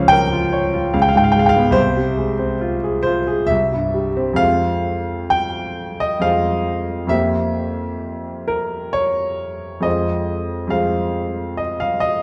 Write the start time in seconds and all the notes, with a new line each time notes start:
Already playing: C#2 C#3 F3 C#4 F5
0.08 G5
0.12 A#4
0.33 F4
0.53 C#5
0.74 F4
0.94 C#2 F5
1.02 G5
1.09 F5
1.15 G#2 G5
1.24 F5
1.32 G#3 G5
1.39 F5
1.46 F5 G5
1.56 B3
1.71 C2 C5
1.97 C3
2.17 G#3
2.39 C4
2.61 F4
2.84 G#4
3.03 F4 C5
3.27 G#4
3.47 C2 E5
3.72 G2
3.94 G3
4.17 C4
4.33 F2 G#3 C4 F5
4.38 F4
5.30 G5
6.00 D#5
6.19 F2 G#3 C4 F5
6.24 F4
7.07 F2 A#3 C4 E5
7.11 G4
8.48 A#4
8.93 C#5
9.80 F2 G#3 C4 D#5
9.85 F4
10.67 F2 G#3 C4 F5
10.72 F4
11.57 D#5
11.80 F5
12.00 D#5